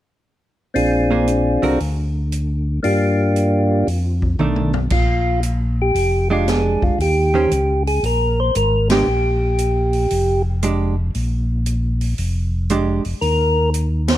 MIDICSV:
0, 0, Header, 1, 5, 480
1, 0, Start_track
1, 0, Tempo, 519481
1, 697, Time_signature, 4, 2, 24, 8
1, 13099, End_track
2, 0, Start_track
2, 0, Title_t, "Tonewheel organ"
2, 0, Program_c, 0, 16
2, 685, Note_on_c, 0, 60, 46
2, 691, Note_on_c, 0, 62, 41
2, 698, Note_on_c, 0, 65, 41
2, 702, Note_on_c, 0, 68, 50
2, 1652, Note_off_c, 0, 60, 0
2, 1656, Note_off_c, 0, 62, 0
2, 1659, Note_off_c, 0, 65, 0
2, 1661, Note_off_c, 0, 68, 0
2, 2612, Note_on_c, 0, 58, 50
2, 2619, Note_on_c, 0, 62, 44
2, 2626, Note_on_c, 0, 65, 46
2, 2632, Note_on_c, 0, 67, 52
2, 3577, Note_off_c, 0, 58, 0
2, 3581, Note_off_c, 0, 62, 0
2, 3585, Note_off_c, 0, 65, 0
2, 3587, Note_off_c, 0, 67, 0
2, 4546, Note_on_c, 0, 65, 84
2, 4991, Note_off_c, 0, 65, 0
2, 5375, Note_on_c, 0, 67, 78
2, 5807, Note_off_c, 0, 67, 0
2, 5846, Note_on_c, 0, 65, 67
2, 5997, Note_on_c, 0, 68, 73
2, 5998, Note_off_c, 0, 65, 0
2, 6311, Note_on_c, 0, 65, 63
2, 6320, Note_off_c, 0, 68, 0
2, 6456, Note_off_c, 0, 65, 0
2, 6482, Note_on_c, 0, 67, 81
2, 7236, Note_off_c, 0, 67, 0
2, 7276, Note_on_c, 0, 68, 79
2, 7433, Note_off_c, 0, 68, 0
2, 7444, Note_on_c, 0, 70, 85
2, 7761, Note_on_c, 0, 72, 89
2, 7763, Note_off_c, 0, 70, 0
2, 7900, Note_off_c, 0, 72, 0
2, 7915, Note_on_c, 0, 70, 90
2, 8207, Note_off_c, 0, 70, 0
2, 8236, Note_on_c, 0, 67, 77
2, 9631, Note_off_c, 0, 67, 0
2, 12209, Note_on_c, 0, 70, 94
2, 12658, Note_off_c, 0, 70, 0
2, 13025, Note_on_c, 0, 72, 71
2, 13099, Note_off_c, 0, 72, 0
2, 13099, End_track
3, 0, Start_track
3, 0, Title_t, "Hollow-body jazz guitar"
3, 0, Program_c, 1, 26
3, 1021, Note_on_c, 1, 58, 48
3, 1029, Note_on_c, 1, 62, 47
3, 1029, Note_on_c, 1, 68, 51
3, 1031, Note_on_c, 1, 72, 55
3, 1163, Note_off_c, 1, 58, 0
3, 1167, Note_off_c, 1, 62, 0
3, 1167, Note_off_c, 1, 68, 0
3, 1168, Note_off_c, 1, 72, 0
3, 1499, Note_on_c, 1, 50, 50
3, 1504, Note_on_c, 1, 60, 52
3, 1511, Note_on_c, 1, 66, 60
3, 1514, Note_on_c, 1, 70, 64
3, 1643, Note_off_c, 1, 50, 0
3, 1645, Note_off_c, 1, 60, 0
3, 1648, Note_off_c, 1, 66, 0
3, 1650, Note_off_c, 1, 70, 0
3, 4062, Note_on_c, 1, 51, 51
3, 4071, Note_on_c, 1, 57, 51
3, 4074, Note_on_c, 1, 62, 55
3, 4351, Note_off_c, 1, 51, 0
3, 4356, Note_off_c, 1, 57, 0
3, 4357, Note_off_c, 1, 62, 0
3, 5824, Note_on_c, 1, 56, 57
3, 5831, Note_on_c, 1, 62, 57
3, 5835, Note_on_c, 1, 67, 63
3, 6431, Note_off_c, 1, 56, 0
3, 6434, Note_off_c, 1, 62, 0
3, 6436, Note_off_c, 1, 67, 0
3, 6781, Note_on_c, 1, 51, 61
3, 6791, Note_on_c, 1, 61, 62
3, 6794, Note_on_c, 1, 67, 64
3, 6796, Note_on_c, 1, 72, 59
3, 6925, Note_off_c, 1, 51, 0
3, 6930, Note_off_c, 1, 61, 0
3, 6932, Note_off_c, 1, 67, 0
3, 6933, Note_off_c, 1, 72, 0
3, 8232, Note_on_c, 1, 56, 57
3, 8239, Note_on_c, 1, 62, 54
3, 8242, Note_on_c, 1, 67, 63
3, 8371, Note_off_c, 1, 56, 0
3, 8374, Note_off_c, 1, 62, 0
3, 8375, Note_off_c, 1, 67, 0
3, 9821, Note_on_c, 1, 56, 51
3, 9832, Note_on_c, 1, 62, 47
3, 9834, Note_on_c, 1, 67, 49
3, 10109, Note_off_c, 1, 56, 0
3, 10115, Note_off_c, 1, 62, 0
3, 10116, Note_off_c, 1, 67, 0
3, 11738, Note_on_c, 1, 56, 59
3, 11745, Note_on_c, 1, 62, 62
3, 11749, Note_on_c, 1, 67, 64
3, 12026, Note_off_c, 1, 56, 0
3, 12030, Note_off_c, 1, 62, 0
3, 12032, Note_off_c, 1, 67, 0
3, 13099, End_track
4, 0, Start_track
4, 0, Title_t, "Tonewheel organ"
4, 0, Program_c, 2, 16
4, 696, Note_on_c, 2, 34, 62
4, 1462, Note_off_c, 2, 34, 0
4, 1499, Note_on_c, 2, 36, 54
4, 1647, Note_off_c, 2, 36, 0
4, 1668, Note_on_c, 2, 38, 61
4, 2588, Note_off_c, 2, 38, 0
4, 2630, Note_on_c, 2, 43, 67
4, 3549, Note_off_c, 2, 43, 0
4, 3579, Note_on_c, 2, 41, 60
4, 4027, Note_off_c, 2, 41, 0
4, 4067, Note_on_c, 2, 35, 64
4, 4511, Note_off_c, 2, 35, 0
4, 4541, Note_on_c, 2, 34, 72
4, 5465, Note_off_c, 2, 34, 0
4, 5497, Note_on_c, 2, 29, 72
4, 6264, Note_off_c, 2, 29, 0
4, 6303, Note_on_c, 2, 29, 34
4, 6383, Note_off_c, 2, 29, 0
4, 6455, Note_on_c, 2, 39, 73
4, 6905, Note_off_c, 2, 39, 0
4, 6944, Note_on_c, 2, 37, 67
4, 7390, Note_off_c, 2, 37, 0
4, 7418, Note_on_c, 2, 34, 68
4, 7866, Note_off_c, 2, 34, 0
4, 7906, Note_on_c, 2, 32, 69
4, 8350, Note_off_c, 2, 32, 0
4, 8374, Note_on_c, 2, 34, 79
4, 9300, Note_off_c, 2, 34, 0
4, 9344, Note_on_c, 2, 29, 78
4, 10264, Note_off_c, 2, 29, 0
4, 10302, Note_on_c, 2, 34, 72
4, 11222, Note_off_c, 2, 34, 0
4, 11260, Note_on_c, 2, 29, 72
4, 12022, Note_off_c, 2, 29, 0
4, 12063, Note_on_c, 2, 29, 31
4, 12141, Note_off_c, 2, 29, 0
4, 12213, Note_on_c, 2, 39, 67
4, 13099, Note_off_c, 2, 39, 0
4, 13099, End_track
5, 0, Start_track
5, 0, Title_t, "Drums"
5, 698, Note_on_c, 9, 46, 32
5, 790, Note_off_c, 9, 46, 0
5, 1177, Note_on_c, 9, 42, 37
5, 1269, Note_off_c, 9, 42, 0
5, 1504, Note_on_c, 9, 46, 27
5, 1597, Note_off_c, 9, 46, 0
5, 1666, Note_on_c, 9, 46, 31
5, 1758, Note_off_c, 9, 46, 0
5, 2144, Note_on_c, 9, 42, 40
5, 2237, Note_off_c, 9, 42, 0
5, 2623, Note_on_c, 9, 46, 34
5, 2715, Note_off_c, 9, 46, 0
5, 3104, Note_on_c, 9, 42, 39
5, 3196, Note_off_c, 9, 42, 0
5, 3584, Note_on_c, 9, 46, 34
5, 3676, Note_off_c, 9, 46, 0
5, 3902, Note_on_c, 9, 36, 38
5, 3995, Note_off_c, 9, 36, 0
5, 4055, Note_on_c, 9, 47, 33
5, 4148, Note_off_c, 9, 47, 0
5, 4213, Note_on_c, 9, 47, 38
5, 4305, Note_off_c, 9, 47, 0
5, 4376, Note_on_c, 9, 43, 54
5, 4469, Note_off_c, 9, 43, 0
5, 4531, Note_on_c, 9, 49, 59
5, 4538, Note_on_c, 9, 36, 64
5, 4623, Note_off_c, 9, 49, 0
5, 4631, Note_off_c, 9, 36, 0
5, 5016, Note_on_c, 9, 42, 46
5, 5108, Note_off_c, 9, 42, 0
5, 5501, Note_on_c, 9, 46, 43
5, 5594, Note_off_c, 9, 46, 0
5, 5984, Note_on_c, 9, 38, 38
5, 5984, Note_on_c, 9, 42, 45
5, 6076, Note_off_c, 9, 38, 0
5, 6077, Note_off_c, 9, 42, 0
5, 6305, Note_on_c, 9, 36, 43
5, 6397, Note_off_c, 9, 36, 0
5, 6471, Note_on_c, 9, 46, 40
5, 6563, Note_off_c, 9, 46, 0
5, 6943, Note_on_c, 9, 42, 47
5, 7036, Note_off_c, 9, 42, 0
5, 7273, Note_on_c, 9, 46, 35
5, 7366, Note_off_c, 9, 46, 0
5, 7425, Note_on_c, 9, 46, 42
5, 7518, Note_off_c, 9, 46, 0
5, 7900, Note_on_c, 9, 42, 52
5, 7993, Note_off_c, 9, 42, 0
5, 8219, Note_on_c, 9, 38, 67
5, 8220, Note_on_c, 9, 51, 52
5, 8312, Note_off_c, 9, 38, 0
5, 8313, Note_off_c, 9, 51, 0
5, 8856, Note_on_c, 9, 42, 47
5, 8948, Note_off_c, 9, 42, 0
5, 9175, Note_on_c, 9, 46, 33
5, 9267, Note_off_c, 9, 46, 0
5, 9336, Note_on_c, 9, 46, 44
5, 9429, Note_off_c, 9, 46, 0
5, 9817, Note_on_c, 9, 42, 46
5, 9910, Note_off_c, 9, 42, 0
5, 10298, Note_on_c, 9, 46, 40
5, 10391, Note_off_c, 9, 46, 0
5, 10773, Note_on_c, 9, 42, 44
5, 10865, Note_off_c, 9, 42, 0
5, 11095, Note_on_c, 9, 46, 36
5, 11188, Note_off_c, 9, 46, 0
5, 11253, Note_on_c, 9, 46, 42
5, 11345, Note_off_c, 9, 46, 0
5, 11731, Note_on_c, 9, 42, 47
5, 11823, Note_off_c, 9, 42, 0
5, 12055, Note_on_c, 9, 46, 29
5, 12147, Note_off_c, 9, 46, 0
5, 12215, Note_on_c, 9, 46, 39
5, 12307, Note_off_c, 9, 46, 0
5, 12694, Note_on_c, 9, 42, 47
5, 12786, Note_off_c, 9, 42, 0
5, 13011, Note_on_c, 9, 38, 70
5, 13012, Note_on_c, 9, 51, 61
5, 13099, Note_off_c, 9, 38, 0
5, 13099, Note_off_c, 9, 51, 0
5, 13099, End_track
0, 0, End_of_file